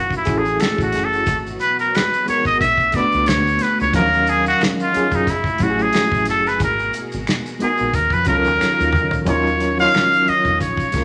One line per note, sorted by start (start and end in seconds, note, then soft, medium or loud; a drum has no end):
0.00 0.23 F#1 medium
0.00 1.25 E3 medium
0.00 2.57 F#3 medium
0.00 1.25 A3 medium
0.00 0.14 F#4 medium
0.00 2.57 F#4 medium
0.10 kick medium
0.10 maracas soft
0.17 0.40 E4 medium
0.25 0.57 A1 medium
0.25 1.27 C#4 medium
0.25 1.27 E4 medium
0.25 1.28 F#4 medium
0.25 0.28 G#4 medium
0.25 kick loud
0.25 closed hi-hat medium
0.25 maracas soft
0.30 0.36 G#4 medium
0.36 0.62 G#4 medium
0.36 1.32 A4 medium
0.45 maracas soft
0.60 0.82 A4 medium
0.60 finger snap medium
0.60 snare loud
0.60 closed hi-hat medium
0.60 maracas medium
0.78 0.92 A1 medium
0.78 kick loud
0.78 maracas soft
0.83 1.06 F#4 medium
0.92 1.24 F#1 medium
0.92 snare soft
0.92 closed hi-hat medium
0.92 maracas medium
1.05 1.38 A4 loud
1.13 maracas soft
1.26 1.57 G#1 loud
1.26 2.59 B2 medium
1.26 2.59 B3 medium
1.26 kick loud
1.26 closed hi-hat medium
1.26 maracas medium
1.47 maracas soft
1.60 1.78 B4 loud
1.60 closed hi-hat medium
1.60 maracas medium
1.79 1.97 A#4 medium
1.79 maracas soft
1.95 2.28 B4 loud
1.95 finger snap medium
1.95 snare loud
1.95 closed hi-hat medium
1.95 maracas medium
2.13 maracas soft
2.25 2.59 G#3 medium
2.25 2.60 B3 medium
2.25 2.61 D#4 medium
2.25 2.61 F#4 medium
2.25 2.45 C#5 loud
2.25 muted fingered electric bass stroke soft
2.25 closed hi-hat medium
2.25 maracas soft
2.30 2.62 A#4 medium
2.45 2.62 G#1 medium
2.45 2.60 D#5 loud
2.45 kick medium
2.45 maracas soft
2.60 2.90 B1 loud
2.60 3.92 D3 medium
2.60 3.92 A3 medium
2.60 3.92 B3 medium
2.60 3.92 D4 medium
2.60 2.97 E5 loud
2.60 kick medium
2.60 closed hi-hat medium
2.60 maracas medium
2.77 kick medium
2.77 maracas soft
2.92 3.75 A3 medium
2.92 3.75 B3 medium
2.92 3.76 D4 medium
2.92 3.76 F#4 medium
2.92 3.29 D5 loud
2.92 kick loud
2.92 closed hi-hat medium
2.92 maracas medium
2.97 3.77 B4 medium
2.97 snare soft
3.12 3.26 C#2 medium
3.12 maracas soft
3.26 3.57 D2 loud
3.26 3.64 C#5 loud
3.26 finger snap medium
3.26 snare loud
3.26 closed hi-hat medium
3.26 maracas medium
3.47 maracas soft
3.59 3.80 B4 medium
3.59 snare soft
3.59 closed hi-hat medium
3.59 maracas soft
3.80 3.93 C#2 loud
3.80 3.94 C#5 medium
3.80 maracas soft
3.92 4.52 D#2 loud
3.92 5.26 D#3 medium
3.92 4.00 F3 medium
3.92 5.26 F#3 medium
3.92 4.75 C#4 medium
3.92 5.26 C#4 medium
3.92 4.76 D#4 medium
3.92 4.31 A#4 loud
3.92 5.25 F5 medium
3.92 4.76 F5 medium
3.92 kick loud
3.92 closed hi-hat medium
3.92 maracas medium
3.97 4.78 F#3 medium
3.97 4.77 A#4 loud
4.13 maracas soft
4.26 4.47 G#4 loud
4.26 closed hi-hat medium
4.26 maracas soft
4.46 4.62 F#4 medium
4.46 maracas medium
4.61 finger snap medium
4.61 snare loud
4.61 closed hi-hat medium
4.61 maracas medium
4.80 5.17 F4 medium
4.80 maracas soft
4.92 5.26 F#3 medium
4.92 5.27 C#4 medium
4.92 5.27 D#4 medium
4.92 5.28 F4 medium
4.92 closed hi-hat medium
4.92 maracas soft
4.96 5.28 G#4 medium
4.96 muted fingered electric bass stroke soft
5.12 5.30 F#2 medium
5.12 5.31 D#4 medium
5.12 kick medium
5.12 maracas soft
5.27 5.57 F#1 loud
5.27 6.59 E3 medium
5.27 6.59 A3 medium
5.27 5.64 E4 medium
5.27 6.59 F#4 medium
5.27 7.91 G#4 medium
5.27 kick medium
5.27 closed hi-hat medium
5.27 maracas medium
5.44 kick medium
5.44 maracas soft
5.58 5.90 A1 medium
5.58 6.60 F#3 medium
5.58 6.60 A3 medium
5.58 6.61 C#4 medium
5.58 6.61 E4 medium
5.58 kick loud
5.58 closed hi-hat medium
5.58 maracas medium
5.63 5.84 F#4 medium
5.63 5.69 G4 medium
5.70 6.65 G#4 medium
5.79 6.28 G#4 loud
5.79 maracas soft
5.93 finger snap medium
5.93 snare loud
5.93 closed hi-hat medium
5.93 maracas medium
6.12 6.25 A1 medium
6.12 kick loud
6.12 maracas soft
6.25 6.57 F#1 medium
6.25 snare soft
6.25 closed hi-hat medium
6.25 maracas soft
6.30 6.50 A4 medium
6.47 6.61 B4 medium
6.47 snare soft
6.47 maracas soft
6.60 6.90 G#1 loud
6.60 7.92 B2 medium
6.60 7.92 F#4 medium
6.60 7.92 A#4 medium
6.60 6.93 A#4 medium
6.60 kick loud
6.60 closed hi-hat medium
6.60 maracas medium
6.79 maracas soft
6.93 closed hi-hat medium
6.93 maracas soft
7.12 7.26 G#1 medium
7.12 maracas medium
7.27 finger snap medium
7.27 snare loud
7.27 closed hi-hat medium
7.27 maracas medium
7.46 maracas medium
7.59 7.93 G#3 medium
7.59 7.94 B3 medium
7.59 7.94 D#4 medium
7.59 7.95 F#4 medium
7.59 7.97 G#4 medium
7.59 muted fingered electric bass stroke soft
7.59 closed hi-hat medium
7.59 maracas soft
7.64 7.95 A#4 medium
7.78 7.93 A#1 medium
7.78 maracas soft
7.93 8.10 D#2 loud
7.93 9.25 D#3 medium
7.93 9.25 F#3 medium
7.93 9.25 C#4 medium
7.93 9.25 F4 medium
7.93 8.15 A#4 medium
7.93 kick medium
7.93 closed hi-hat medium
7.93 maracas medium
8.10 8.25 F2 medium
8.10 8.27 B4 loud
8.10 kick medium
8.10 maracas soft
8.25 8.47 C#2 medium
8.25 9.09 F#3 medium
8.25 9.09 C#4 medium
8.25 9.10 D#4 medium
8.25 9.23 A#4 loud
8.25 kick loud
8.25 closed hi-hat medium
8.25 maracas medium
8.30 9.10 F4 medium
8.30 8.36 A4 medium
8.37 9.14 A#4 medium
8.45 8.59 D#2 medium
8.45 maracas soft
8.61 finger snap medium
8.61 muted fingered electric bass stroke soft
8.61 snare medium
8.61 maracas medium
8.80 8.97 D#2 medium
8.80 maracas soft
8.93 9.24 D#3 loud
8.93 mid tom medium
8.93 maracas soft
9.11 floor tom medium
9.11 maracas soft
9.25 9.86 D#2 medium
9.25 10.58 D#3 medium
9.25 9.67 F#3 medium
9.25 10.59 F#3 medium
9.25 10.58 C#4 medium
9.25 9.68 C#4 medium
9.25 9.68 D#4 medium
9.25 11.04 F4 medium
9.25 9.69 F4 medium
9.25 9.76 C#5 medium
9.25 kick loud
9.25 closed hi-hat medium
9.25 maracas medium
9.30 9.69 A#4 medium
9.47 maracas soft
9.60 closed hi-hat medium
9.60 maracas soft
9.78 10.60 F#3 medium
9.78 10.60 C#4 medium
9.78 10.61 D#4 medium
9.78 10.61 F4 medium
9.78 10.30 F5 loud
9.78 maracas soft
9.82 10.62 C#5 medium
9.94 finger snap medium
9.94 snare loud
9.94 closed hi-hat medium
9.94 maracas medium
10.13 maracas soft
10.28 10.61 D#5 medium
10.28 muted fingered electric bass stroke soft
10.28 closed hi-hat medium
10.45 10.62 F2 medium
10.45 kick medium
10.45 maracas soft
10.60 10.90 A#1 loud
10.60 11.04 C#3 medium
10.60 11.04 G#3 medium
10.60 11.04 C#4 medium
10.60 11.04 C#5 medium
10.60 kick medium
10.60 closed hi-hat medium
10.60 maracas soft
10.77 kick medium
10.77 maracas soft
10.92 11.04 C#2 medium
10.92 11.04 G#3 medium
10.92 11.04 A#3 medium
10.92 11.04 C#4 soft
10.92 11.04 F4 medium
10.92 kick medium
10.92 closed hi-hat medium
10.92 maracas medium
10.96 11.04 A#4 medium
10.96 snare soft